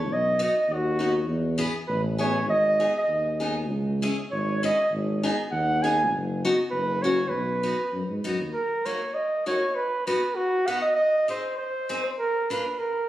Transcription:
0.00 0.10 E2 loud
0.00 0.14 C#5 medium
0.09 0.48 B1 medium
0.13 0.43 D#5 loud
0.39 0.53 B3 medium
0.39 0.53 D#4 soft
0.39 0.53 F#4 medium
0.43 0.74 D#5 medium
0.68 1.30 D#2 medium
0.73 1.31 F#4 medium
0.99 1.12 B3 medium
0.99 1.12 D#4 medium
0.99 1.12 F#4 medium
1.28 1.67 E2 medium
1.58 1.72 B3 medium
1.58 1.72 E4 medium
1.58 1.72 G#4 medium
1.87 2.48 A1 loud
1.87 2.02 B4 medium
2.18 2.32 B3 medium
2.18 2.33 E4 medium
2.18 2.32 G#4 medium
2.18 2.47 C#5 medium
2.47 2.87 G#1 medium
2.47 2.92 D#5 loud
2.80 2.93 B3 medium
2.80 2.93 D#4 soft
2.80 2.93 G#4 medium
2.98 3.40 D#5 medium
3.08 3.71 D#2 medium
3.40 3.54 B3 soft
3.40 3.54 D#4 medium
3.40 3.54 G#4 medium
3.69 4.09 C#2 medium
4.02 4.16 C#4 medium
4.02 4.15 E4 medium
4.02 4.16 G#4 medium
4.31 4.71 G#1 medium
4.31 4.61 C#5 medium
4.63 4.76 C#4 medium
4.63 4.76 E4 medium
4.63 4.76 G#4 medium
4.63 4.91 D#5 medium
4.91 5.30 G#1 medium
5.23 5.36 B3 medium
5.23 5.36 D#4 medium
5.23 5.36 G#4 medium
5.51 6.14 D#2 medium
5.51 5.84 F#5 medium
5.82 5.96 B3 medium
5.82 5.97 D#4 medium
5.82 5.96 G#4 medium
5.82 6.11 G#5 loud
6.12 6.51 F#1 loud
6.45 6.57 B3 medium
6.45 6.57 D#4 medium
6.45 6.57 F#4 medium
6.71 7.34 F#1 loud
6.71 7.04 B4 loud
7.02 7.16 A#3 medium
7.02 7.16 C#4 soft
7.02 7.16 F#4 medium
7.02 7.30 C#5 loud
7.29 7.72 B1 medium
7.29 8.24 B4 loud
7.63 7.77 B3 medium
7.63 7.76 D#4 medium
7.63 7.76 F#4 medium
7.93 8.03 F#2 medium
8.09 8.24 G#2 medium
8.24 8.38 F#2 medium
8.24 8.38 B3 medium
8.24 8.38 D#4 medium
8.24 8.38 F#4 medium
8.40 8.53 D#2 medium
8.53 8.87 A#4 medium
8.85 8.99 A#3 soft
8.85 8.99 D#4 soft
8.85 8.99 F#4 medium
8.85 9.16 C#5 medium
9.14 9.46 D#5 medium
9.46 9.60 A#3 medium
9.46 9.60 D#4 soft
9.46 9.60 F#4 medium
9.46 9.76 C#5 medium
9.75 10.06 B4 medium
10.06 10.20 B3 medium
10.06 10.20 D#4 medium
10.06 10.20 F#4 medium
10.06 10.37 B4 medium
10.35 10.68 F#4 medium
10.67 10.81 B3 medium
10.67 10.81 D#4 medium
10.67 10.81 F#4 medium
10.67 10.81 F#5 loud
10.82 10.95 D#5 medium
10.95 11.25 D#5 loud
11.28 11.41 C4 medium
11.28 11.41 D#4 medium
11.28 11.41 G#4 medium
11.28 11.56 C5 medium
11.58 12.00 C5 medium
11.89 12.02 C4 medium
11.89 12.02 D#4 soft
11.89 12.02 G#4 medium
12.03 12.10 C5 medium
12.18 12.52 A#4 medium
12.50 12.63 A#3 medium
12.50 12.63 D4 medium
12.50 12.63 F4 medium
12.50 12.80 B4 medium
12.79 13.09 A#4 medium

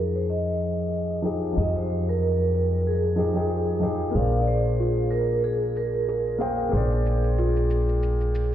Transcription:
0.00 1.54 F2 medium
0.00 1.22 F3 medium
0.00 1.23 D#4 medium
0.00 1.25 G4 medium
0.00 1.25 G#4 medium
0.14 0.29 C5 medium
0.14 shaker soft
0.29 1.22 D#5 medium
0.29 shaker soft
0.46 shaker soft
0.60 shaker medium
0.79 shaker soft
0.93 shaker soft
1.11 shaker soft
1.22 1.51 F3 medium
1.22 1.53 D#4 medium
1.22 1.53 G4 medium
1.22 1.54 G#4 medium
1.22 shaker medium
1.44 shaker soft
1.53 3.13 F3 medium
1.53 3.14 D#4 medium
1.57 4.12 F2 medium
1.57 3.16 G4 medium
1.57 3.17 G#4 medium
1.57 1.76 D#5 loud
1.57 shaker soft
1.76 2.09 C5 medium
1.76 shaker soft
1.90 shaker medium
2.08 2.80 A#4 medium
2.08 shaker soft
2.22 shaker soft
2.40 shaker soft
2.54 shaker medium
2.72 shaker soft
2.81 2.87 A#4 medium
2.86 3.79 G#4 medium
2.86 shaker soft
3.04 shaker soft
3.16 3.31 F3 medium
3.16 3.31 D#4 medium
3.16 3.32 G4 medium
3.16 3.32 G#4 medium
3.16 shaker medium
3.34 3.78 F3 medium
3.34 3.79 D#4 medium
3.34 3.80 G#4 medium
3.34 3.79 G5 medium
3.34 shaker soft
3.50 shaker soft
3.68 shaker soft
3.80 4.10 F3 medium
3.80 4.11 D#4 medium
3.80 4.11 G4 medium
3.80 4.12 G#4 medium
3.80 shaker medium
4.01 shaker soft
4.11 6.70 A#1 medium
4.11 6.35 A#3 medium
4.11 6.37 G#4 medium
4.15 4.44 G#4 medium
4.15 6.38 C5 medium
4.15 6.39 D5 medium
4.15 4.42 F5 loud
4.15 shaker soft
4.33 shaker soft
4.42 4.48 D5 medium
4.47 5.14 C5 medium
4.47 shaker medium
4.65 shaker soft
4.80 5.09 F4 medium
4.80 shaker soft
4.98 shaker soft
5.11 5.44 A#4 medium
5.11 shaker medium
5.30 shaker soft
5.44 5.77 G#4 medium
5.44 shaker soft
5.62 shaker soft
5.76 6.37 A#4 medium
5.76 shaker medium
5.94 shaker soft
6.09 6.38 G#4 medium
6.09 shaker soft
6.27 shaker soft
6.38 6.68 A#3 medium
6.38 6.69 G#4 medium
6.38 6.70 C5 medium
6.38 6.70 F5 medium
6.38 6.70 G5 medium
6.38 shaker medium
6.59 shaker soft
6.69 8.55 A#3 medium
6.69 8.55 G#4 medium
6.73 8.55 A#1 medium
6.73 7.02 G#4 medium
6.73 8.55 C5 medium
6.73 8.55 D5 medium
6.73 shaker soft
6.92 shaker soft
7.06 shaker medium
7.24 shaker soft
7.38 7.68 F4 medium
7.38 shaker soft
7.56 shaker soft
7.70 shaker medium
7.89 shaker soft
8.03 shaker soft
8.21 shaker soft
8.35 shaker medium

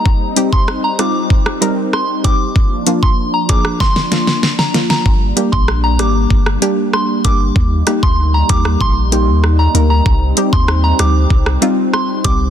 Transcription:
0.00 2.52 G3 medium
0.00 2.52 D#4 medium
0.06 2.53 C4 medium
0.06 kick loud
0.36 0.49 G3 medium
0.36 0.49 C4 medium
0.36 0.49 D#4 medium
0.36 0.49 G4 medium
0.36 closed hi-hat medium
0.53 0.63 C6 medium
0.53 kick medium
0.68 cross-stick medium
0.84 0.94 A#5 medium
0.99 1.12 G3 medium
0.99 1.12 C4 medium
0.99 1.12 D#4 medium
0.99 1.12 F4 medium
0.99 1.10 D6 medium
0.99 cross-stick medium
0.99 closed hi-hat medium
1.30 kick medium
1.46 cross-stick medium
1.61 1.74 G3 medium
1.61 1.74 C4 medium
1.61 1.74 D#4 medium
1.61 1.74 A#4 loud
1.61 closed hi-hat medium
1.93 2.04 C6 medium
1.93 cross-stick medium
2.24 2.37 G3 medium
2.24 2.37 C4 medium
2.24 2.37 D#4 medium
2.24 2.37 G4 medium
2.24 2.35 D6 medium
2.24 kick medium
2.24 closed hi-hat medium
2.55 5.03 F3 medium
2.55 10.02 A#3 medium
2.55 7.52 D4 medium
2.55 kick medium
2.86 2.99 F3 medium
2.86 2.99 A#3 medium
2.86 2.99 D4 medium
2.86 3.00 F4 medium
2.86 closed hi-hat medium
3.03 3.13 C6 medium
3.03 kick medium
3.34 3.44 A#5 medium
3.49 3.62 F3 medium
3.49 3.62 A#3 medium
3.49 3.62 D4 medium
3.49 3.62 G#4 medium
3.49 3.60 D6 medium
3.49 kick medium
3.49 closed hi-hat medium
3.65 cross-stick medium
3.80 4.25 C6 loud
3.80 kick medium
3.80 snare soft
3.96 snare medium
4.11 4.24 F3 medium
4.11 4.24 A#3 medium
4.11 4.24 D4 medium
4.11 4.25 F4 medium
4.11 snare medium
4.11 closed hi-hat medium
4.27 snare medium
4.43 snare medium
4.59 4.69 A#5 medium
4.59 snare medium
4.74 4.87 F3 medium
4.74 4.87 A#3 medium
4.74 4.87 D4 medium
4.74 4.87 F4 medium
4.74 snare medium
4.74 closed hi-hat medium
4.90 5.00 A#5 medium
4.90 snare medium
5.06 5.32 G1 loud
5.06 12.50 G3 medium
5.06 kick loud
5.36 5.49 G3 medium
5.36 5.49 A#3 medium
5.36 5.49 D4 medium
5.36 5.50 G4 medium
5.36 closed hi-hat medium
5.52 6.01 A#1 medium
5.52 5.63 C6 medium
5.52 kick medium
5.68 cross-stick medium
5.84 5.94 A#5 medium
5.99 6.26 G#1 loud
5.99 6.12 G3 medium
5.99 6.12 A#3 medium
5.99 6.12 D4 medium
5.99 6.12 G4 medium
5.99 6.10 D6 medium
5.99 cross-stick medium
5.99 closed hi-hat medium
6.30 6.57 G1 loud
6.30 kick medium
6.46 cross-stick medium
6.62 6.74 G3 medium
6.62 6.74 A#3 medium
6.62 6.75 D4 medium
6.62 6.75 G4 loud
6.62 closed hi-hat medium
6.93 7.04 C6 medium
6.93 cross-stick medium
7.24 7.51 G1 medium
7.24 7.37 G3 medium
7.24 7.37 A#3 medium
7.24 7.37 D4 medium
7.24 7.37 G4 medium
7.24 7.35 D6 medium
7.24 kick loud
7.24 closed hi-hat medium
7.55 7.83 D#2 loud
7.55 12.50 D#4 medium
7.55 kick medium
7.87 7.99 G3 medium
7.87 7.99 A#3 medium
7.87 7.99 D#4 medium
7.87 8.00 G4 medium
7.87 cross-stick medium
7.87 closed hi-hat medium
8.03 8.43 D2 medium
8.03 8.13 C6 medium
8.03 kick medium
8.34 8.44 A#5 medium
8.49 8.76 D#2 loud
8.49 8.62 G3 medium
8.49 8.62 A#3 medium
8.49 8.62 D#4 medium
8.49 8.62 G4 medium
8.49 8.60 D6 medium
8.49 kick medium
8.49 closed hi-hat medium
8.65 cross-stick medium
8.81 9.29 A#1 loud
8.81 9.25 C6 loud
8.81 kick medium
9.12 9.24 G3 medium
9.12 9.24 A#3 medium
9.12 9.25 D#4 medium
9.12 9.25 G4 medium
9.12 closed hi-hat medium
9.28 9.68 D#2 medium
9.44 cross-stick medium
9.59 9.69 A#5 medium
9.74 10.01 D2 loud
9.74 9.87 G3 medium
9.74 9.87 A#3 medium
9.74 9.87 D#4 medium
9.74 9.87 A#4 medium
9.74 closed hi-hat medium
9.90 10.00 A#5 medium
10.06 10.33 C2 loud
10.06 12.50 C4 medium
10.06 kick loud
10.37 10.49 G3 medium
10.37 10.50 C4 medium
10.37 10.50 D#4 medium
10.37 10.50 G4 medium
10.37 closed hi-hat medium
10.53 10.93 D#2 medium
10.53 10.63 C6 medium
10.53 kick medium
10.68 cross-stick medium
10.84 10.94 A#5 medium
10.99 11.26 D2 medium
10.99 11.12 G3 medium
10.99 11.12 C4 medium
10.99 11.12 D#4 medium
10.99 11.12 G4 medium
10.99 11.10 D6 medium
10.99 cross-stick medium
10.99 closed hi-hat medium
11.30 11.57 C2 loud
11.30 kick medium
11.46 cross-stick medium
11.61 11.74 G3 medium
11.61 11.74 C4 medium
11.61 11.75 D#4 medium
11.61 11.75 F4 loud
11.61 closed hi-hat medium
11.93 12.04 C6 medium
11.93 cross-stick medium
12.24 12.50 C2 loud
12.24 12.37 G3 medium
12.24 12.37 C4 medium
12.24 12.37 D#4 medium
12.24 12.37 G4 medium
12.24 12.35 D6 medium
12.24 kick loud
12.24 closed hi-hat medium

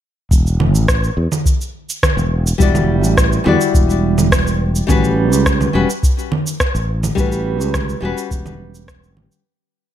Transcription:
0.31 0.74 E1 medium
0.31 kick medium
0.31 shaker medium
0.47 shaker soft
0.60 low conga medium
0.74 1.09 A1 medium
0.74 shaker medium
0.88 kick loud
0.88 cross-stick medium
0.88 shaker soft
1.04 shaker soft
1.17 1.26 E2 medium
1.32 low conga medium
1.32 shaker medium
1.46 kick medium
1.46 shaker medium
1.61 shaker soft
1.90 shaker medium
2.03 kick loud
2.03 cross-stick loud
2.03 low conga medium
2.03 shaker medium
2.17 2.52 E1 loud
2.17 shaker soft
2.47 shaker medium
2.58 3.03 E1 medium
2.58 3.41 G3 medium
2.58 3.42 E4 medium
2.58 3.43 F#4 medium
2.58 kick medium
2.58 shaker medium
2.62 3.43 D5 medium
2.75 low conga medium
2.75 shaker soft
3.03 3.38 A1 medium
3.03 shaker medium
3.17 kick loud
3.17 cross-stick medium
3.17 shaker soft
3.33 shaker soft
3.44 3.55 E2 medium
3.44 4.84 G3 medium
3.44 4.85 E4 medium
3.44 4.86 F#4 medium
3.44 low conga medium
3.48 4.86 D5 medium
3.61 shaker medium
3.74 4.81 E1 medium
3.74 kick loud
3.74 shaker medium
3.90 shaker soft
4.18 low conga medium
4.18 shaker medium
4.32 kick loud
4.32 cross-stick loud
4.32 shaker medium
4.47 shaker soft
4.76 shaker medium
4.87 5.32 A1 medium
4.87 5.70 G3 medium
4.87 5.71 C#4 medium
4.87 5.71 F#4 medium
4.87 5.72 B4 medium
4.87 kick loud
4.87 low conga medium
4.87 shaker medium
5.04 shaker soft
5.32 5.66 C#2 loud
5.32 shaker medium
5.46 kick loud
5.46 cross-stick medium
5.46 shaker soft
5.61 low conga medium
5.61 shaker soft
5.73 5.84 E1 medium
5.73 5.87 G3 medium
5.73 5.87 C#4 medium
5.73 5.88 F#4 medium
5.73 5.88 B4 medium
5.90 shaker medium
6.03 kick loud
6.03 shaker medium
6.19 shaker soft
6.32 low conga medium
6.47 shaker medium
6.60 kick loud
6.60 cross-stick loud
6.60 shaker medium
6.75 7.09 A1 loud
6.75 shaker soft
7.03 low conga medium
7.03 shaker medium
7.15 7.60 A1 loud
7.15 7.98 G3 medium
7.15 7.99 C#4 medium
7.15 8.00 F#4 medium
7.15 kick loud
7.15 shaker medium
7.19 8.01 B4 medium
7.32 shaker soft
7.60 7.95 C#2 medium
7.60 shaker medium
7.74 kick loud
7.74 cross-stick medium
7.74 low conga medium
7.74 shaker medium
7.89 shaker soft
8.01 8.12 E1 medium
8.01 9.41 G3 medium
8.01 9.42 C#4 medium
8.01 9.42 F#4 medium
8.05 9.43 B4 medium
8.18 shaker medium
8.31 9.17 E1 medium
8.31 kick loud
8.31 shaker medium
8.46 low conga medium
8.46 shaker soft
8.75 shaker medium
8.88 kick loud
8.88 cross-stick loud
8.88 shaker medium
9.04 shaker soft
9.17 9.26 A1 medium
9.17 low conga medium
9.32 shaker medium

